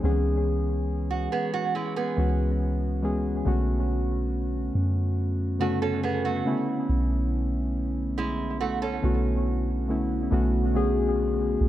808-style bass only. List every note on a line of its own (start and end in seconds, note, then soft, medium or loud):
0.04 1.28 C#2 loud
2.18 3.42 C#2 loud
3.47 4.71 B1 loud
4.75 6.42 F#2 loud
6.89 8.99 B1 loud
9.04 10.28 B1 loud
10.32 11.57 B1 loud
11.61 11.69 B1 loud